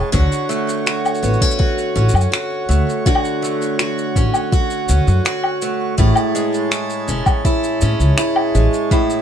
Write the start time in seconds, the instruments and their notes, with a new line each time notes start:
Already playing: steel-string acoustic guitar A2 G#3 C#4 E4
0.12 upright bass D2, steel-string acoustic guitar D3 F#4, harmonium F#4 C#5, kick, shaker
0.32 shaker
0.49 steel-string acoustic guitar A3, shaker
0.69 shaker
0.86 steel-string acoustic guitar F#4, finger snap, shaker
1.05 low woodblock, shaker
1.15 shaker
1.23 upright bass A1, steel-string acoustic guitar B3, shaker
1.33 shaker
1.41 steel-string acoustic guitar C#4, kick, shaker
1.51 shaker
1.59 steel-string acoustic guitar F#4, kick
1.78 shaker
1.95 upright bass A1, steel-string acoustic guitar C#4, shaker
2.09 shaker
2.14 upright bass F#2, low woodblock, shaker
2.21 shaker
2.32 steel-string acoustic guitar F#4, finger snap, shaker
2.69 upright bass D2, steel-string acoustic guitar A3, shaker
2.89 shaker
3.06 steel-string acoustic guitar D3 F#4, kick, shaker
3.15 low woodblock
3.25 shaker
3.42 steel-string acoustic guitar A3, shaker
3.62 shaker
3.79 steel-string acoustic guitar F#4, finger snap, shaker
3.98 shaker
4.16 upright bass A1, steel-string acoustic guitar C#4, kick, shaker
4.34 low woodblock, shaker
4.52 steel-string acoustic guitar F#4, kick, shaker
4.70 shaker
4.89 upright bass D2, steel-string acoustic guitar C#4, shaker
5.07 upright bass F#2, shaker
5.25 steel-string acoustic guitar F#4, finger snap, shaker
5.44 low woodblock
5.62 steel-string acoustic guitar A3, shaker
5.98 upright bass A1, steel-string acoustic guitar A2 E4, harmonium G#3 C#5 A5, kick, shaker
6.16 low woodblock, shaker
6.35 steel-string acoustic guitar G#3, shaker
6.54 shaker
6.71 steel-string acoustic guitar E4, finger snap, shaker
6.90 shaker
7.08 upright bass E1, steel-string acoustic guitar C#4, shaker
7.26 kick, low woodblock, shaker
7.45 steel-string acoustic guitar E4, kick, shaker
7.64 shaker
7.81 upright bass A2, steel-string acoustic guitar C#4, shaker
8.00 upright bass C#2, shaker
8.18 steel-string acoustic guitar E4, finger snap, shaker
8.36 low woodblock
8.55 upright bass A1, steel-string acoustic guitar G#3, shaker
8.74 shaker
8.91 steel-string acoustic guitar A2 E4, kick, shaker
9.10 shaker